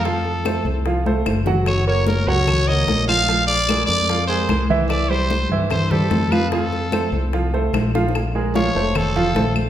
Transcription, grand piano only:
X:1
M:4/4
L:1/8
Q:1/4=148
K:Fphr
V:1 name="Grand piano"
[F,Ff]2 [=A,=Ac]2 [F,Ff] [A,Ac]2 [G,Gg]- | [G,Gg] [B,Bd]2 [G,Gg]2 [B,Bd]2 [F,Ff] | [F,Ff]2 [A,AB]2 [F,Ff] [A,AB]2 [=E,=E=e]- | [=E,=E=e] [=G,=Gc]2 [E,Ee]2 [G,Gc]2 [F,Ff] |
[F,Ff]2 [=A,=Ac]2 [F,Ff] [A,Ac]2 [F,Ff] | z [A,AB] [F,Ff] [=A,=Ac]2 [F,Ff] [A,Ac]2 |]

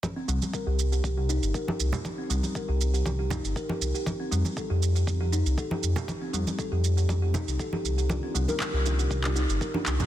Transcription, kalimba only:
X:1
M:4/4
L:1/16
Q:1/4=119
K:Cdor
V:1 name="Kalimba"
z C G, z B G z G z G E z B G z G | z C G, z B G z G z G E z B G z G | z C G, z A G z G z G E z A G z G | z C G, z A G z G z G E z A G z G |
z C G, z B G z G z G E z B G z G |]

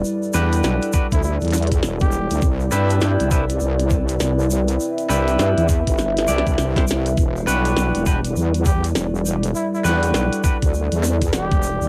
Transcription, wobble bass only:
X:1
M:4/4
L:1/16
Q:"Swing 16ths" 1/4=101
K:Em
V:1 name="Wobble bass" clef=bass
z2 E,,2 B,,, z2 D,,2 E,,3 E,,,3 D,, | C,,2 G,,2 G,, C,,3 C,,4 C,,4 | z2 C,,2 G,, E,,2 G,,,3 C,, C,, C,,4 | E,,,2 B,,,2 B,,, E,,,3 E,,4 E,,,4 |
z2 E,,2 B,,, z2 D,,2 E,,3 E,,,3 D,, |]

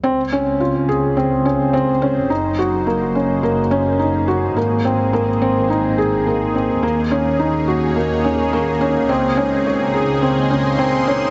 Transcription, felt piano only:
X:1
M:4/4
L:1/8
Q:1/4=106
K:Gblyd
V:1 name="Felt piano"
C D F A C D C D | E G B, D B, D E G | B, C B, C E A B, C | B, D E G B, D B, D |
C D d A C D C D |]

